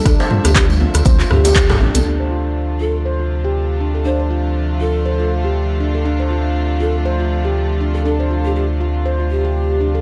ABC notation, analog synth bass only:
X:1
M:4/4
L:1/16
Q:"Swing 16ths" 1/4=120
K:Dm
V:1 name="Analog synth bass" clef=bass
D,, z2 D,,3 z D,, D,, z D,,3 C,, A,,, C,, | D,,16- | D,,16- | D,,16- |
D,,16 |]